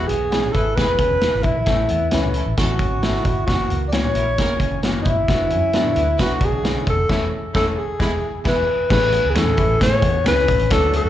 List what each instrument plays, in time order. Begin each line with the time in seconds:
Already playing: grand piano E3 G#3 B3 G#4
0.08 fingered electric bass B1, clean electric guitar B3, alto saxophone G#4, closed hi-hat, muted conga
0.31 grand piano E3 G#3 B3 G#4, clean electric guitar C#4, snare, closed hi-hat, muted conga
0.43 low conga
0.53 fingered electric bass G#1, horn section E4 G#4 B4, clean electric guitar E4, alto saxophone A4, kick, closed hi-hat
0.75 fingered electric bass E1, grand piano E3 G#3 B3 G#4, clean electric guitar B3, horn section E4 G#4 B4, alto saxophone B4, kick, snare, closed hi-hat, muted conga
0.99 clean electric guitar C#4, kick, closed hi-hat, muted conga
1.10 fingered electric bass E1, high conga
1.21 grand piano E3 G#3 B3 G#4, snare, closed hi-hat, high conga
1.33 fingered electric bass G#1, high conga
1.43 fingered electric bass B1, alto saxophone E4, clean electric guitar E4, kick, closed hi-hat, low conga
1.55 fingered electric bass A#1, high conga
1.66 fingered electric bass A1, grand piano E3 A3 C#4 A4, clean electric guitar A3, kick, snare, closed hi-hat, low conga
1.89 fingered electric bass E2, clean electric guitar B3, closed hi-hat, muted conga
2.11 fingered electric bass C#2, grand piano E3 A3 C#4 B4, clean electric guitar C#4, snare, closed hi-hat, muted conga
2.24 low conga
2.34 horn section C#4 E4 A4, clean electric guitar E4, closed hi-hat, muted conga
2.46 fingered electric bass A1
2.57 fingered electric bass A1, grand piano E3 A3 C#4 A4, horn section C#4 E4 A4, alto saxophone F#4, kick, snare, closed hi-hat
2.79 fingered electric bass G#1, clean electric guitar C#4, kick, closed hi-hat, muted conga
2.92 high conga
3.02 grand piano E3 A3 C#4 A4, clean electric guitar E4, snare, closed hi-hat, muted conga, high conga
3.14 snare, high conga
3.25 fingered electric bass G1, kick, closed hi-hat, muted conga, low conga
3.35 high conga
3.46 fingered electric bass F#1, grand piano E3 A#3 C#4 F#4, alto saxophone F#4, clean electric guitar F#4, kick, snare, closed hi-hat, low conga
3.70 fingered electric bass C#2, clean electric guitar A#3, closed hi-hat, muted conga
3.88 grand piano E3, alto saxophone D5
3.92 grand piano A#3 C#4 F#4, clean electric guitar C#4, alto saxophone C#5, snare, closed hi-hat
4.04 low conga
4.15 fingered electric bass A#1, clean electric guitar E4, horn section E4 F#4 A#4, closed hi-hat, muted conga
4.38 fingered electric bass F#1, grand piano E3 A#3 C#4 G#4, clean electric guitar A#3, horn section E4 F#4 A#4, kick, snare, closed hi-hat
4.60 fingered electric bass F#1, clean electric guitar C#4, kick, closed hi-hat, muted conga
4.71 high conga
4.83 grand piano E3 A#3 C#4 F#4, snare, closed hi-hat, muted conga, high conga
4.94 high conga
5.01 alto saxophone D#4, closed hi-hat
5.06 fingered electric bass G1, clean electric guitar E4, kick, low conga
5.10 alto saxophone E4
5.16 high conga
5.28 fingered electric bass F#1, grand piano D3 F#3 B3 F#4, clean electric guitar B3, kick, snare, closed hi-hat, muted conga, low conga
5.50 fingered electric bass F#2, clean electric guitar C#4, closed hi-hat, muted conga
5.73 grand piano D3 F#3 B3 F#4, clean electric guitar D4, snare, closed hi-hat, muted conga
5.84 low conga
5.96 fingered electric bass D2, horn section D4 F#4 B4, clean electric guitar E4, closed hi-hat
6.18 fingered electric bass B1, grand piano D3 F#3 B3 F#4, horn section D4 F#4 B4, alto saxophone F#4, kick, snare, closed hi-hat
6.41 fingered electric bass B1, clean electric guitar D4, alto saxophone G#4, kick, closed hi-hat
6.52 high conga
6.63 grand piano D3 F#3 B3 C#4, clean electric guitar F#4, snare, closed hi-hat, high conga
6.75 high conga
6.87 fingered electric bass F1, alto saxophone A4, kick, closed hi-hat, low conga
6.97 high conga
7.09 fingered electric bass E1, grand piano E3 A3 C#4 A4, horn section A3 C#4 E4, kick, snare, crash
7.53 fingered electric bass E1, grand piano E3 A3 C#4 A4, horn section A3 C#4 E4, alto saxophone A4, kick, snare
7.77 alto saxophone G#4
7.99 fingered electric bass E1, grand piano E3 G#3 B3 G#4, horn section G#3 B3 E4, kick, snare
8.44 fingered electric bass E1, grand piano E3 G#3 B3 G#4, horn section G#3 B3 E4, alto saxophone B4, kick, snare, crash
8.89 fingered electric bass A1, grand piano E3 A3 C#4 G#4, clean electric guitar A3, horn section C#4 E4 G#4, alto saxophone B4, kick, snare, crash, muted conga, low conga
9.12 clean electric guitar B3, closed hi-hat
9.24 fingered electric bass C#2
9.30 alto saxophone G#4
9.35 fingered electric bass E2, grand piano E3 A3 C#4 G#4, clean electric guitar C#4, alto saxophone A4, finger snap, snare, closed hi-hat, muted conga
9.46 low conga
9.57 fingered electric bass A1, grand piano E3 A3 C#4 G#4, clean electric guitar E4, kick, closed hi-hat
9.80 fingered electric bass A2, grand piano E3 A3 C#4 G#4, alto saxophone C#5, kick, snare, closed hi-hat, muted conga
10.02 fingered electric bass E2, clean electric guitar B3, kick, closed hi-hat
10.14 high conga
10.24 fingered electric bass C#2, grand piano E3 A3 C#4 G#4, clean electric guitar C#4, alto saxophone B4, finger snap, snare, closed hi-hat, muted conga, high conga
10.36 snare, high conga
10.48 kick, closed hi-hat, low conga
10.58 fingered electric bass A1, closed hi-hat, high conga
10.70 fingered electric bass D2, grand piano F#3 C#4 D4 A4, horn section F#3 D4 F#4, clean electric guitar D4, alto saxophone A4, kick, snare, closed hi-hat, low conga
10.93 clean electric guitar A3, alto saxophone A4, closed hi-hat, muted conga
11.04 fingered electric bass F#2